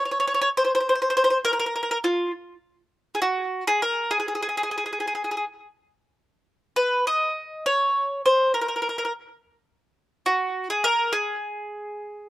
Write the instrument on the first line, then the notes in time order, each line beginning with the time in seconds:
mandolin
0.05 C#5
0.11 C#5
0.20 C#5
0.27 C#5
0.34 C#5
0.42 C#5
0.57 C5
0.65 C5
0.75 C5
0.80 C5
0.89 C5
0.95 C5
1.02 C5
1.10 C5
1.17 C5
1.24 C5
1.30 C5
1.45 A#4
1.53 A#4
1.60 A#4
1.66 A#4
1.76 A#4
1.83 A#4
1.91 A#4
2.04 F4
3.15 G#4
3.22 F#4
3.67 G#4
3.82 A#4
4.11 G#4
4.20 G#4
4.28 G#4
4.35 G#4
4.42 G#4
4.49 G#4
4.57 G#4
4.63 G#4
4.71 G#4
4.78 G#4
4.86 G#4
4.93 G#4
5.00 G#4
5.07 G#4
5.15 G#4
5.24 G#4
5.31 G#4
5.37 G#4
6.76 B4
7.07 D#5
7.66 C#5
8.26 C5
8.54 A#4
8.61 A#4
8.68 A#4
8.76 A#4
8.82 A#4
8.89 A#4
8.98 A#4
9.05 A#4
10.26 F#4
10.70 G#4
10.84 A#4
11.13 G#4